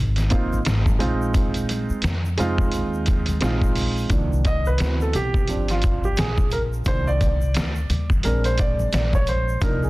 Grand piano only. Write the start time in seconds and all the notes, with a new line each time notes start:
0.30 A#3 C4 D#4 F4
0.99 G#3 C4 D#4 F4
2.37 G#3 C4 D#4 F4
3.41 G#3 C4 D#4 F4
4.10 D#3 F3 A#3 D4
4.47 D#5
4.67 B4
4.80 E3 B3 C4 F#4
5.02 A4
5.16 G4
5.49 F3 C4 D4
5.71 F4
6.05 G4
6.19 G#4
6.53 A#4
6.86 D#3 F3 A#3 D4 C5
7.07 D5
8.24 G#3 C4 D4 A#4
8.45 C5
8.60 D5
8.94 D5
9.15 C#5
9.29 C5
9.63 F3 A#3 D4 D#4 A#4
9.84 G#4